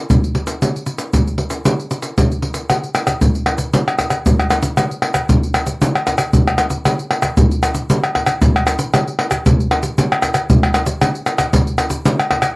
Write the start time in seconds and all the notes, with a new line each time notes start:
0.10 pandeiro, shaker, surdo
0.24 pandeiro, shaker
0.35 pandeiro
0.47 pandeiro, shaker
0.62 pandeiro, shaker, surdo
0.76 pandeiro, shaker
0.86 pandeiro, shaker
0.98 pandeiro, shaker
1.13 pandeiro, shaker, surdo
1.27 pandeiro, shaker
1.38 pandeiro
1.50 pandeiro, shaker
1.65 pandeiro, shaker, surdo
1.80 pandeiro, shaker
1.91 pandeiro, shaker
2.02 pandeiro, shaker
2.18 pandeiro, shaker, surdo
2.32 pandeiro, shaker
2.42 pandeiro
2.54 pandeiro, shaker
2.70 pandeiro, tamborim, shaker, surdo
2.84 pandeiro, shaker
2.95 pandeiro, tamborim, shaker
3.07 pandeiro, tamborim, shaker, surdo
3.21 pandeiro, shaker, surdo
3.35 pandeiro, shaker
3.46 pandeiro, tamborim
3.58 pandeiro, shaker, surdo
3.73 pandeiro, shaker, surdo
3.88 pandeiro, tamborim, shaker
3.99 pandeiro, tamborim, shaker, surdo
4.10 pandeiro, tamborim, shaker
4.26 pandeiro, shaker, surdo
4.40 pandeiro, tamborim, shaker, surdo
4.50 pandeiro, tamborim, shaker
4.62 pandeiro, shaker, surdo
4.77 pandeiro, tamborim, shaker, surdo
4.91 pandeiro, shaker
5.02 pandeiro, tamborim
5.14 pandeiro, tamborim, shaker, surdo
5.29 pandeiro, shaker, surdo
5.43 pandeiro, shaker
5.54 pandeiro, tamborim, shaker
5.66 pandeiro, shaker, surdo
5.82 pandeiro, shaker, surdo
5.95 pandeiro, tamborim, shaker
6.07 pandeiro, tamborim, shaker, surdo
6.18 pandeiro, tamborim, shaker
6.33 pandeiro, shaker, surdo
6.48 pandeiro, tamborim, shaker, surdo
6.58 pandeiro, tamborim, shaker
6.70 pandeiro, shaker, surdo
6.85 pandeiro, tamborim, shaker, surdo
6.99 pandeiro, shaker
7.11 pandeiro, tamborim
7.22 pandeiro, tamborim, shaker, surdo
7.37 pandeiro, shaker, surdo
7.51 pandeiro, shaker
7.63 pandeiro, tamborim, shaker
7.75 pandeiro, shaker, surdo
7.90 pandeiro, shaker, surdo
8.04 pandeiro, tamborim, shaker
8.15 pandeiro, tamborim, surdo
8.26 pandeiro, tamborim, shaker
8.42 pandeiro, shaker, surdo
8.56 pandeiro, tamborim, shaker
8.67 pandeiro, tamborim, shaker
8.79 pandeiro, shaker, surdo
8.94 pandeiro, tamborim, shaker, surdo
9.08 pandeiro, shaker
9.19 pandeiro, tamborim
9.31 pandeiro, tamborim, shaker, surdo
9.46 pandeiro, shaker, surdo
9.60 pandeiro, shaker
9.71 pandeiro, tamborim
9.83 pandeiro, shaker, surdo
9.98 pandeiro, shaker, surdo
10.12 pandeiro, tamborim, shaker
10.22 pandeiro, tamborim, shaker, surdo
10.34 pandeiro, tamborim, shaker
10.50 pandeiro, shaker, surdo
10.63 pandeiro, tamborim, shaker, surdo
10.74 pandeiro, tamborim, shaker
10.86 pandeiro, shaker, surdo
11.01 pandeiro, tamborim, shaker, surdo
11.15 pandeiro, shaker
11.26 pandeiro, tamborim, shaker
11.38 pandeiro, tamborim, shaker, surdo
11.53 pandeiro, shaker, surdo
11.67 pandeiro, shaker
11.78 pandeiro, tamborim, shaker
11.90 pandeiro, shaker, surdo
12.05 pandeiro, shaker, surdo
12.20 pandeiro, tamborim, shaker
12.31 pandeiro, tamborim, surdo
12.42 pandeiro, tamborim, shaker